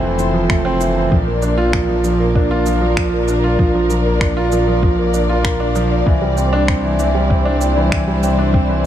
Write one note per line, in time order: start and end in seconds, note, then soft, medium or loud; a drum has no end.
0.00 1.09 F1 medium
0.00 0.03 E3 medium
0.00 0.12 E3 medium
0.00 0.34 F3 medium
0.00 0.50 A3 medium
0.00 0.65 C4 loud
0.00 1.08 E4 medium
0.00 1.08 A4 medium
0.00 1.08 C5 medium
0.18 0.33 E3 medium
0.18 shaker medium
0.34 0.43 F3 medium
0.50 0.64 A3 medium
0.50 finger snap medium
0.50 kick loud
0.65 0.74 C4 loud
0.81 0.90 E3 medium
0.81 shaker medium
0.96 1.05 E3 medium
1.11 6.03 A#1 medium
1.11 1.26 F3 medium
1.11 6.02 D4 medium
1.11 6.03 A#4 medium
1.11 8.86 D5 medium
1.11 kick medium
1.27 1.36 A#3 medium
1.42 1.57 D4 medium
1.42 shaker medium
1.58 1.67 F4 loud
1.73 1.82 F3 medium
1.73 finger snap medium
1.73 kick medium
1.89 1.98 F3 medium
2.04 2.19 F3 medium
2.04 shaker medium
2.20 2.29 A#3 medium
2.35 2.50 D4 medium
2.35 kick medium
2.51 2.60 F4 loud
2.66 2.75 F3 medium
2.66 shaker medium
2.82 2.91 F3 medium
2.97 3.12 F3 medium
2.97 finger snap loud
2.97 kick loud
3.13 3.22 A#3 medium
3.28 3.43 D4 medium
3.28 shaker medium
3.44 3.53 F4 loud
3.59 3.68 F3 medium
3.59 kick loud
3.75 3.83 F3 medium
3.90 4.05 F3 medium
3.90 shaker medium
4.06 4.14 A#3 medium
4.21 4.36 D4 medium
4.21 finger snap loud
4.21 kick medium
4.37 4.45 F4 loud
4.52 4.61 F3 medium
4.52 shaker medium
4.68 4.76 F3 medium
4.83 4.98 F3 medium
4.83 kick loud
4.98 5.07 A#3 medium
5.14 5.29 D4 medium
5.14 shaker medium
5.29 5.44 F4 loud
5.45 5.59 A#4 medium
5.45 finger snap loud
5.45 kick medium
5.60 5.75 D4 loud
5.75 5.84 F3 loud
5.75 shaker medium
5.91 6.00 F5 medium
6.06 8.86 C2 loud
6.06 6.21 E3 medium
6.06 8.86 G3 medium
6.06 8.86 E4 medium
6.06 8.86 C5 medium
6.06 kick loud
6.22 6.31 G3 medium
6.37 6.52 C4 medium
6.37 shaker medium
6.53 6.62 D4 loud
6.68 6.83 C4 medium
6.68 finger snap loud
6.68 kick loud
6.84 6.93 E3 medium
6.99 7.14 E3 medium
6.99 shaker medium
7.15 7.24 G3 medium
7.30 7.45 C4 medium
7.30 kick loud
7.45 7.54 D4 loud
7.61 7.76 C4 medium
7.61 shaker medium
7.77 7.85 E3 medium
7.92 8.07 E3 medium
7.92 finger snap loud
7.92 kick loud
8.08 8.16 G3 medium
8.23 8.38 C4 medium
8.23 shaker medium
8.39 8.47 D4 loud
8.54 8.69 C4 medium
8.54 kick loud
8.69 8.78 E3 medium